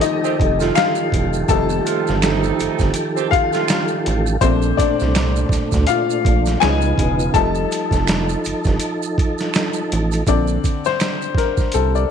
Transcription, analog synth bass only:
0, 0, Header, 1, 2, 480
1, 0, Start_track
1, 0, Key_signature, -2, "major"
1, 0, Tempo, 731707
1, 975, Time_signature, 4, 2, 24, 8
1, 7942, End_track
2, 0, Start_track
2, 0, Title_t, "Analog synth bass"
2, 0, Program_c, 0, 38
2, 270, Note_on_c, 0, 29, 86
2, 465, Note_off_c, 0, 29, 0
2, 745, Note_on_c, 0, 28, 83
2, 943, Note_off_c, 0, 28, 0
2, 983, Note_on_c, 0, 29, 101
2, 1181, Note_off_c, 0, 29, 0
2, 1372, Note_on_c, 0, 31, 87
2, 1651, Note_off_c, 0, 31, 0
2, 1710, Note_on_c, 0, 31, 42
2, 1762, Note_off_c, 0, 31, 0
2, 1841, Note_on_c, 0, 31, 79
2, 1923, Note_off_c, 0, 31, 0
2, 2671, Note_on_c, 0, 33, 88
2, 2866, Note_off_c, 0, 33, 0
2, 2902, Note_on_c, 0, 34, 109
2, 3101, Note_off_c, 0, 34, 0
2, 3292, Note_on_c, 0, 36, 78
2, 3571, Note_off_c, 0, 36, 0
2, 3611, Note_on_c, 0, 38, 44
2, 3668, Note_off_c, 0, 38, 0
2, 3762, Note_on_c, 0, 38, 85
2, 3843, Note_off_c, 0, 38, 0
2, 4108, Note_on_c, 0, 34, 73
2, 4305, Note_off_c, 0, 34, 0
2, 4352, Note_on_c, 0, 37, 108
2, 4547, Note_off_c, 0, 37, 0
2, 4585, Note_on_c, 0, 28, 89
2, 4783, Note_off_c, 0, 28, 0
2, 4823, Note_on_c, 0, 29, 106
2, 5022, Note_off_c, 0, 29, 0
2, 5198, Note_on_c, 0, 29, 88
2, 5483, Note_off_c, 0, 29, 0
2, 5553, Note_on_c, 0, 31, 47
2, 5604, Note_off_c, 0, 31, 0
2, 5683, Note_on_c, 0, 31, 88
2, 5764, Note_off_c, 0, 31, 0
2, 6512, Note_on_c, 0, 33, 84
2, 6707, Note_off_c, 0, 33, 0
2, 6744, Note_on_c, 0, 34, 106
2, 6942, Note_off_c, 0, 34, 0
2, 7709, Note_on_c, 0, 36, 97
2, 7905, Note_off_c, 0, 36, 0
2, 7942, End_track
0, 0, End_of_file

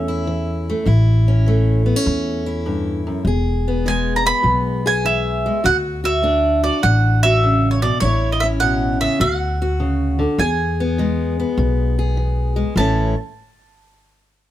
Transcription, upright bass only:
0, 0, Header, 1, 2, 480
1, 0, Start_track
1, 0, Key_signature, 3, "major"
1, 0, Tempo, 594648
1, 707, Time_signature, 4, 2, 24, 8
1, 11712, End_track
2, 0, Start_track
2, 0, Title_t, "Upright bass"
2, 0, Program_c, 0, 32
2, 0, Note_on_c, 0, 40, 92
2, 580, Note_off_c, 0, 40, 0
2, 697, Note_on_c, 0, 33, 101
2, 1543, Note_off_c, 0, 33, 0
2, 1666, Note_on_c, 0, 40, 92
2, 2510, Note_off_c, 0, 40, 0
2, 2621, Note_on_c, 0, 28, 96
2, 3467, Note_off_c, 0, 28, 0
2, 3583, Note_on_c, 0, 35, 91
2, 4429, Note_off_c, 0, 35, 0
2, 4560, Note_on_c, 0, 38, 97
2, 5398, Note_off_c, 0, 38, 0
2, 5519, Note_on_c, 0, 33, 88
2, 6358, Note_off_c, 0, 33, 0
2, 6471, Note_on_c, 0, 33, 96
2, 7313, Note_off_c, 0, 33, 0
2, 7426, Note_on_c, 0, 38, 93
2, 8269, Note_off_c, 0, 38, 0
2, 8383, Note_on_c, 0, 40, 98
2, 9226, Note_off_c, 0, 40, 0
2, 9344, Note_on_c, 0, 35, 93
2, 10186, Note_off_c, 0, 35, 0
2, 10297, Note_on_c, 0, 33, 92
2, 10604, Note_off_c, 0, 33, 0
2, 11712, End_track
0, 0, End_of_file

